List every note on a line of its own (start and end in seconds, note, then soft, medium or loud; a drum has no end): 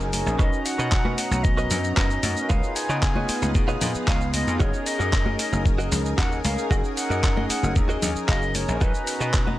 0.00 0.22 F#1 loud
0.00 0.10 G#4 medium
0.00 0.11 A#4 loud
0.00 0.35 A#4 medium
0.00 0.35 G#5 medium
0.00 0.35 D#6 medium
0.00 shaker soft
0.12 0.36 C#4 loud
0.12 0.36 D#4 medium
0.12 0.36 G#4 medium
0.12 0.36 A#4 loud
0.12 muted clean electric guitar stroke soft
0.12 open hi-hat loud
0.12 high conga medium
0.12 shaker medium
0.26 0.37 A#1 medium
0.26 shaker soft
0.38 0.50 B1 loud
0.38 2.48 B3 medium
0.38 2.20 C#4 loud
0.38 2.20 D#4 medium
0.38 0.59 F#4 loud
0.38 2.21 F#4 medium
0.38 0.59 A#4 loud
0.38 0.59 B4 loud
0.38 0.67 D#5 medium
0.38 0.59 D#5 loud
0.38 2.48 A#5 medium
0.38 2.21 A#5 loud
0.38 9.59 D#6 medium
0.38 kick loud
0.38 shaker soft
0.53 shaker soft
0.66 1.16 F#5 loud
0.66 open hi-hat loud
0.66 shaker medium
0.78 1.14 B2 medium
0.78 0.92 F#4 loud
0.78 0.92 A#4 medium
0.78 0.92 B4 medium
0.78 0.92 D#5 medium
0.78 shaker soft
0.92 kick loud
0.92 clap loud
0.92 shaker soft
1.05 1.18 F#4 loud
1.05 1.18 A#4 medium
1.05 1.18 B4 medium
1.05 1.18 F#5 medium
1.05 high conga medium
1.17 1.45 F#5 medium
1.17 open hi-hat medium
1.17 shaker medium
1.31 1.67 B1 medium
1.31 muted clean electric guitar stroke soft
1.31 high conga medium
1.31 shaker soft
1.43 1.95 D#5 medium
1.43 kick loud
1.43 shaker soft
1.57 1.77 F#4 loud
1.57 1.77 A#4 loud
1.57 1.78 B4 loud
1.57 1.78 D#5 loud
1.57 shaker soft
1.71 1.92 F#2 medium
1.71 open hi-hat loud
1.71 low conga medium
1.71 shaker medium
1.84 shaker soft
1.96 2.18 F#2 loud
1.96 2.10 F#4 medium
1.96 2.10 A#4 medium
1.96 2.11 B4 medium
1.96 2.50 D#5 medium
1.96 2.11 D#5 medium
1.96 kick loud
1.96 clap loud
1.96 shaker soft
2.10 shaker soft
2.23 2.34 F#2 loud
2.23 2.46 C#4 loud
2.23 2.47 D#4 medium
2.23 2.47 F#4 medium
2.23 2.47 A#4 loud
2.23 muted clean electric guitar stroke soft
2.23 open hi-hat loud
2.23 high conga medium
2.23 shaker medium
2.37 shaker soft
2.49 2.61 C#2 loud
2.49 4.30 B3 loud
2.49 4.31 D#4 medium
2.49 2.70 F4 loud
2.49 4.31 F4 medium
2.49 4.31 G#4 loud
2.49 4.58 B4 medium
2.49 2.70 B4 loud
2.49 2.70 C#5 loud
2.49 2.70 D#5 loud
2.49 2.77 F5 loud
2.49 4.58 F5 medium
2.49 kick loud
2.49 shaker soft
2.63 shaker soft
2.76 3.01 G#5 loud
2.76 open hi-hat loud
2.76 shaker medium
2.89 3.25 C#3 medium
2.89 3.02 F4 medium
2.89 3.02 B4 medium
2.89 3.02 C#5 medium
2.89 3.03 D#5 medium
2.89 shaker soft
3.02 3.51 G#5 loud
3.02 kick loud
3.02 clap loud
3.02 shaker soft
3.16 3.29 F4 medium
3.16 3.29 B4 medium
3.16 3.29 C#5 medium
3.16 3.29 D#5 medium
3.16 high conga medium
3.29 muted slap bass stroke soft
3.29 open hi-hat medium
3.29 shaker medium
3.42 3.52 C#2 medium
3.42 muted clean electric guitar stroke soft
3.42 high conga medium
3.42 shaker soft
3.55 3.76 B2 medium
3.55 kick loud
3.55 shaker soft
3.68 3.88 F4 loud
3.68 3.88 B4 loud
3.68 3.88 C#5 loud
3.68 3.88 D#5 loud
3.68 shaker soft
3.81 3.92 A#2 medium
3.81 open hi-hat loud
3.81 low conga medium
3.81 shaker medium
3.95 muted slap bass stroke soft
3.95 shaker soft
4.07 4.43 C#2 medium
4.07 4.21 F4 medium
4.07 4.21 B4 medium
4.07 4.21 C#5 medium
4.07 4.21 D#5 medium
4.07 4.32 F5 loud
4.07 kick loud
4.07 clap loud
4.07 shaker soft
4.21 shaker soft
4.33 4.57 B3 loud
4.33 4.57 D#4 medium
4.33 4.57 F4 medium
4.33 4.57 G#4 loud
4.33 4.59 D#5 loud
4.33 muted clean electric guitar stroke soft
4.33 open hi-hat loud
4.33 high conga medium
4.33 shaker medium
4.47 4.58 F2 medium
4.47 shaker soft
4.59 4.71 F#1 loud
4.59 6.41 C#4 medium
4.59 6.41 D#4 medium
4.59 4.80 F#4 loud
4.59 4.80 G#4 medium
4.59 6.41 G#4 medium
4.59 4.80 A#4 loud
4.59 8.77 A#4 medium
4.59 6.42 A#4 loud
4.59 4.88 C#5 loud
4.59 4.80 D#5 loud
4.59 8.77 G#5 medium
4.59 kick loud
4.59 shaker soft
4.73 shaker soft
4.86 5.39 D#5 loud
4.86 open hi-hat loud
4.86 shaker medium
4.99 5.35 F#2 medium
4.99 5.13 F#4 medium
4.99 5.13 G#4 medium
4.99 5.13 A#4 medium
4.99 5.13 D#5 medium
4.99 shaker soft
5.13 kick loud
5.13 clap loud
5.13 shaker soft
5.26 5.39 F#4 medium
5.26 5.39 G#4 medium
5.26 5.39 A#4 medium
5.26 5.39 D#5 medium
5.26 high conga medium
5.39 5.64 D#5 medium
5.39 open hi-hat loud
5.39 shaker medium
5.52 5.88 F#1 medium
5.52 muted clean electric guitar stroke soft
5.52 high conga medium
5.52 shaker soft
5.66 kick loud
5.66 shaker soft
5.78 5.98 F#4 loud
5.78 5.98 G#4 loud
5.78 5.99 A#4 loud
5.78 5.99 D#5 loud
5.78 shaker soft
5.92 6.13 C#2 medium
5.92 open hi-hat loud
5.92 low conga medium
5.92 shaker medium
6.05 shaker soft
6.18 6.39 D#2 loud
6.18 6.31 F#4 medium
6.18 6.31 G#4 medium
6.18 6.32 A#4 medium
6.18 6.32 D#5 medium
6.18 6.42 F#5 loud
6.18 kick loud
6.18 clap loud
6.18 shaker soft
6.32 shaker soft
6.44 6.55 C#2 loud
6.44 6.67 C#4 loud
6.44 6.67 D#4 medium
6.44 6.68 G#4 medium
6.44 6.68 A#4 loud
6.44 6.69 F5 loud
6.44 muted clean electric guitar stroke soft
6.44 open hi-hat medium
6.44 high conga medium
6.44 shaker medium
6.58 shaker soft
6.69 6.81 F#1 loud
6.69 8.51 C#4 medium
6.69 8.51 D#4 medium
6.69 6.91 F#4 loud
6.69 8.52 G#4 medium
6.69 6.91 G#4 loud
6.69 8.52 A#4 loud
6.69 6.91 A#4 loud
6.69 6.76 D#5 loud
6.69 6.91 F#5 loud
6.69 kick loud
6.69 shaker soft
6.84 shaker soft
6.96 7.45 F#5 loud
6.96 open hi-hat loud
6.96 shaker medium
7.10 7.46 F#2 medium
7.10 7.23 F#4 medium
7.10 7.23 G#4 medium
7.10 7.24 A#4 medium
7.10 7.24 D#5 medium
7.10 shaker soft
7.23 kick loud
7.23 clap loud
7.23 shaker soft
7.37 7.50 F#4 medium
7.37 7.50 G#4 medium
7.37 7.50 A#4 medium
7.37 7.50 D#5 loud
7.37 high conga medium
7.49 7.74 F#5 medium
7.49 muted slap bass stroke soft
7.49 open hi-hat medium
7.49 shaker medium
7.63 7.74 F#1 medium
7.63 muted clean electric guitar stroke soft
7.63 high conga medium
7.63 shaker soft
7.76 7.97 D#2 medium
7.76 kick loud
7.76 shaker soft
7.89 8.09 F#4 loud
7.89 8.09 G#4 loud
7.89 8.09 A#4 loud
7.89 8.09 D#5 loud
7.89 shaker soft
8.02 8.13 D#2 medium
8.02 open hi-hat loud
8.02 low conga medium
8.02 shaker medium
8.15 muted slap bass stroke soft
8.15 shaker soft
8.28 8.64 F#1 loud
8.28 8.42 F#4 loud
8.28 8.42 G#4 medium
8.28 8.42 A#4 medium
8.28 8.57 D#5 loud
8.28 8.42 F5 medium
8.28 kick loud
8.28 clap loud
8.28 shaker soft
8.42 shaker soft
8.54 8.78 C#4 loud
8.54 8.78 D#4 medium
8.54 8.78 G#4 medium
8.54 8.78 A#4 loud
8.54 8.80 C#5 loud
8.54 muted clean electric guitar stroke soft
8.54 open hi-hat medium
8.54 high conga medium
8.54 shaker medium
8.68 8.79 A#1 medium
8.68 shaker soft
8.80 8.92 B1 loud
8.80 9.59 B3 medium
8.80 9.59 C#4 medium
8.80 9.59 D#4 medium
8.80 9.01 F#4 loud
8.80 9.59 F#4 medium
8.80 9.01 A#4 medium
8.80 9.59 B4 loud
8.80 9.01 B4 loud
8.80 9.01 D#5 loud
8.80 9.59 A#5 medium
8.80 9.59 A#5 loud
8.80 kick loud
8.80 shaker soft
8.94 shaker soft
9.07 open hi-hat loud
9.07 shaker medium
9.20 9.56 B2 medium
9.20 9.34 F#4 medium
9.20 9.34 A#4 medium
9.20 9.34 B4 medium
9.20 9.34 D#5 medium
9.20 shaker soft
9.34 kick loud
9.34 clap loud
9.34 shaker soft
9.47 9.59 F#4 medium
9.47 9.59 A#4 medium
9.47 9.59 B4 medium
9.47 9.59 D#5 medium
9.47 high conga loud